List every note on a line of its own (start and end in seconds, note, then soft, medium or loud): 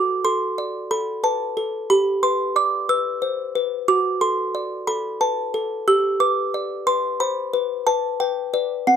0.00 1.86 F#4 medium
0.00 0.23 D6 medium
0.25 0.77 A4 soft
0.25 0.88 C6 medium
0.58 1.11 D5 soft
0.91 1.43 A4 soft
0.91 1.22 B5 medium
1.24 1.56 B4 soft
1.24 1.87 A5 medium
1.57 1.90 A4 soft
1.90 3.84 G4 medium
1.90 2.21 B5 medium
2.23 2.76 B4 soft
2.23 2.54 C6 medium
2.56 3.09 D5 soft
2.56 2.88 D6 medium
2.89 3.42 B4 medium
2.89 3.84 E6 medium
3.22 3.55 C5 soft
3.55 3.88 B4 soft
3.88 5.83 F#4 medium
3.88 4.20 D6 medium
4.21 4.74 A4 soft
4.21 4.85 C6 loud
4.55 5.08 D5 soft
4.87 5.41 A4 medium
4.87 5.19 B5 medium
5.21 5.54 B4 soft
5.21 5.85 A5 medium
5.54 5.87 A4 soft
5.88 7.83 G4 medium
5.88 6.19 E6 loud
6.20 6.73 B4 medium
6.20 6.84 D6 medium
6.54 7.07 D5 soft
6.87 7.40 B4 medium
6.87 7.19 C6 medium
7.20 7.53 C5 soft
7.20 7.84 B5 medium
7.53 7.86 B4 medium
7.87 8.19 B4 medium
7.87 8.19 A5 medium
8.20 8.52 B4 soft
8.20 8.84 G5 medium
8.54 8.84 B4 soft
8.54 8.84 D5 soft
8.87 8.96 C4 medium
8.87 8.96 F#5 medium